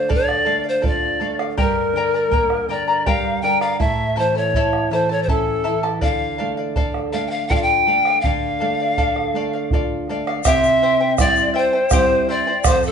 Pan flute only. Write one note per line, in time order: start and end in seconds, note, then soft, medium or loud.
0.15 0.64 D5 medium
0.69 0.84 C5 medium
0.87 1.37 D5 medium
1.61 2.66 A#4 medium
2.71 3.08 D5 medium
3.07 3.43 F5 medium
3.42 3.61 G5 medium
3.62 3.79 F5 medium
3.80 4.20 E5 medium
4.19 4.39 C5 medium
4.37 4.92 C#5 medium
4.93 5.13 C5 medium
5.12 5.24 C#5 medium
5.23 5.31 C5 medium
5.30 5.84 A4 medium
6.04 6.54 F5 medium
7.13 7.26 F5 medium
7.27 7.48 F5 medium
7.27 7.32 G5 medium
7.48 7.57 G5 medium
7.55 7.64 F5 medium
7.62 8.23 G5 loud
8.21 9.70 F5 medium
10.45 11.14 E5 loud
11.20 11.53 D5 loud
11.58 11.90 C5 medium
11.94 12.27 C5 medium
12.30 12.70 D5 medium
12.68 12.85 C5 medium
12.86 12.92 A4 medium